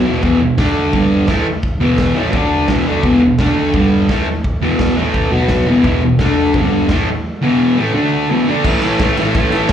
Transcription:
0.05 distorted electric guitar E2 B2 E3, floor tom
0.22 distorted electric guitar E2 B2 E3, kick, floor tom
0.40 distorted electric guitar E2 B2, floor tom
0.58 distorted electric guitar D3 A3 D4, kick, snare, floor tom
0.76 floor tom
0.93 distorted electric guitar G2 D3 G3, kick, floor tom
1.11 floor tom
1.28 distorted electric guitar A2 E3 A3, kick, snare, floor tom
1.46 floor tom
1.63 kick, floor tom
1.80 distorted electric guitar E2 B2 E3, floor tom
1.98 kick, snare, floor tom
2.15 distorted electric guitar A2 E3 A3, floor tom
2.33 distorted electric guitar D3 A3 D4, kick, floor tom
2.50 floor tom
2.68 distorted electric guitar E2 B2 E3, kick, snare, floor tom
2.86 distorted electric guitar D3 A3 D4, floor tom
3.03 distorted electric guitar E2 B2 E3, kick, floor tom
3.21 distorted electric guitar E2 B2, floor tom
3.38 distorted electric guitar D3 A3 D4, kick, snare, floor tom
3.57 floor tom
3.74 distorted electric guitar G2 D3 G3, kick, floor tom
3.92 floor tom
4.09 distorted electric guitar A2 E3 A3, kick, snare, floor tom
4.27 floor tom
4.44 kick, floor tom
4.62 distorted electric guitar E2 B2 E3, floor tom
4.79 kick, snare, floor tom
4.96 distorted electric guitar A2 E3 A3, floor tom
5.14 kick, floor tom
5.31 distorted electric guitar B2 F#3 B3, floor tom
5.48 kick, snare, floor tom
5.67 distorted electric guitar E2 B2 E3, floor tom
5.84 distorted electric guitar E2 B2 E3, kick, floor tom
6.02 distorted electric guitar E2 B2, floor tom
6.19 distorted electric guitar D3 A3 D4, kick, snare, floor tom
6.37 floor tom
6.54 distorted electric guitar G2 D3 G3, kick, floor tom
6.72 floor tom
6.89 distorted electric guitar A2 E3 A3, kick, snare, floor tom
7.07 floor tom
7.42 distorted electric guitar E2 B2 E3
7.77 distorted electric guitar A2 E3 A3
7.93 distorted electric guitar D3 A3 D4
8.29 distorted electric guitar E2 B2 E3
8.47 distorted electric guitar D3 A3 D4
8.64 distorted electric guitar A2 E3 A3, kick, crash
8.82 distorted electric guitar A2 E3 A3, ride
8.99 distorted electric guitar A2 E3 A3, kick, snare, ride
9.17 distorted electric guitar A2 E3 A3, ride
9.35 distorted electric guitar A2 E3 A3, kick, ride
9.52 distorted electric guitar A2 E3 A3, ride
9.69 distorted electric guitar A2 E3, kick, snare, ride

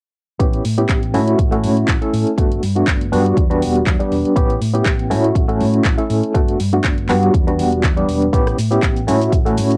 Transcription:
0.39 fingered electric bass A1, reed electric piano B3 C#4 E4 G4, kick, closed hi-hat
0.53 closed hi-hat
0.65 fingered electric bass A2, open hi-hat
0.77 reed electric piano B3 C#4 E4 G4, closed hi-hat
0.89 fingered electric bass A1, kick, clap, closed hi-hat
1.03 closed hi-hat
1.14 fingered electric bass A2, reed electric piano A3 C#4 E4 F#4, open hi-hat
1.27 closed hi-hat
1.39 fingered electric bass A1, kick, closed hi-hat
1.51 reed electric piano A3 C#4 E4 F#4, closed hi-hat
1.64 fingered electric bass A2, open hi-hat
1.77 closed hi-hat
1.88 fingered electric bass A1, kick, clap, closed hi-hat
2.01 reed electric piano A3 C#4 E4 A4, closed hi-hat
2.13 fingered electric bass A2, open hi-hat
2.27 closed hi-hat
2.38 fingered electric bass G1, reed electric piano A3 B3 D4 F#4, kick, closed hi-hat
2.52 closed hi-hat
2.63 fingered electric bass G2, open hi-hat
2.76 reed electric piano A3 B3 D4 F#4, closed hi-hat
2.87 fingered electric bass G1, kick, clap, closed hi-hat
3.01 closed hi-hat
3.12 fingered electric bass G2, reed electric piano G3 B3 D4 F#4, open hi-hat
3.26 closed hi-hat
3.37 fingered electric bass E2, kick, closed hi-hat
3.50 reed electric piano G3 B3 D4 F#4, closed hi-hat
3.62 fingered electric bass E1, open hi-hat
3.76 closed hi-hat
3.87 fingered electric bass E2, kick, clap, closed hi-hat
4.00 reed electric piano G3 B3 D4 G4, closed hi-hat
4.12 fingered electric bass E1, open hi-hat
4.25 closed hi-hat
4.36 fingered electric bass A1, reed electric piano B3 C#4 E4 G4, kick, closed hi-hat
4.50 closed hi-hat
4.61 fingered electric bass A2, open hi-hat
4.74 reed electric piano B3 C#4 E4 G4, closed hi-hat
4.86 fingered electric bass A1, kick, clap, closed hi-hat
4.99 closed hi-hat
5.10 fingered electric bass A2, reed electric piano A3 C#4 E4 F#4, open hi-hat
5.24 closed hi-hat
5.35 fingered electric bass A1, kick, closed hi-hat
5.48 reed electric piano A3 C#4 E4 F#4, closed hi-hat
5.60 fingered electric bass A2, open hi-hat
5.74 closed hi-hat
5.85 fingered electric bass A1, kick, clap, closed hi-hat
5.98 reed electric piano A3 C#4 E4 A4, closed hi-hat
6.10 fingered electric bass A2, open hi-hat
6.23 closed hi-hat
6.34 fingered electric bass G1, reed electric piano A3 B3 D4 F#4, kick, closed hi-hat
6.48 closed hi-hat
6.60 fingered electric bass G2, open hi-hat
6.73 reed electric piano A3 B3 D4 F#4, closed hi-hat
6.84 fingered electric bass G1, kick, clap, closed hi-hat
6.98 closed hi-hat
7.09 fingered electric bass G2, reed electric piano G3 B3 D4 F#4, clap, open hi-hat
7.23 closed hi-hat
7.34 fingered electric bass E2, kick, closed hi-hat
7.47 reed electric piano G3 B3 D4 F#4, closed hi-hat
7.59 fingered electric bass E1, open hi-hat
7.72 closed hi-hat
7.83 fingered electric bass E2, kick, clap, closed hi-hat
7.97 reed electric piano G3 B3 D4 G4, closed hi-hat
8.09 fingered electric bass E1, open hi-hat
8.22 closed hi-hat
8.32 fingered electric bass A1, reed electric piano B3 C#4 E4 G4, kick, closed hi-hat, shaker
8.47 cross-stick, closed hi-hat, shaker
8.58 fingered electric bass A2, open hi-hat, shaker
8.71 reed electric piano B3 C#4 E4 G4, closed hi-hat, shaker
8.83 fingered electric bass A1, kick, clap, closed hi-hat, shaker
8.96 closed hi-hat, shaker
9.07 fingered electric bass A2, reed electric piano A3 C#4 E4 F#4, open hi-hat, shaker
9.21 closed hi-hat, shaker
9.32 fingered electric bass A1, kick, closed hi-hat, shaker
9.45 reed electric piano A3 C#4 E4 F#4, closed hi-hat, shaker
9.57 fingered electric bass A2, open hi-hat, shaker
9.71 closed hi-hat, shaker

